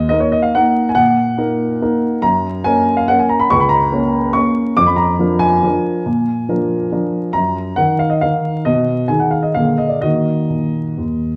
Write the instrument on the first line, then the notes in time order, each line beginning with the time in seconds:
upright piano
Already playing: D#2 D#5
0.09 A#3 D#4 A#4 D#5
0.20 C#5
0.32 D#5
0.42 F5
0.55 A#3 D#4 A#4 F#5
0.89 G#5
0.95 A#2 F#5
1.38 A#3 D#4 A#4
1.82 A#3 D#4 A#4
2.22 F#2 A#5
2.64 A#3 C#4 A#4 G#5
2.97 F5
3.08 A#3 C#4 A#4 F#5
3.19 G#5
3.29 A#5
3.39 B5
3.50 C#2 C#6
3.60 B5
3.69 A#5
3.92 A#3 C#4 A#4
4.33 A#3 C#4 A#4 C#6
4.77 F2 D6
4.86 B5
4.96 A#5
5.19 F3 D4 A#4
5.39 G#5
5.63 F3 D4 A#4
6.06 A#2
6.49 F3 D4 A#4
6.92 F3 D4 A#4
7.33 F#2 A#5
7.76 D#3 D#4 A#4 F#5
7.99 F5
8.10 D#5
8.21 D#3 D#4 A#4 F5
8.65 B2 D#5
9.08 D#3 D#4 G#4 G#5
9.20 F#5
9.31 F5
9.43 D#5
9.54 A#2 D3 A#3 G#4 F5
9.78 D#5
9.89 D5
10.02 D#3 A#3 F#4 D#5
10.50 A#2
10.97 D#2